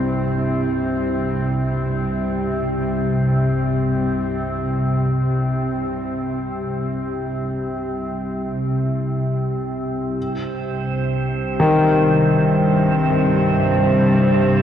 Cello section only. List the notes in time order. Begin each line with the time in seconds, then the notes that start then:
Already playing: G2 G3 C4 C5
10.17 G2
11.06 G3
12.67 C4
14.51 C5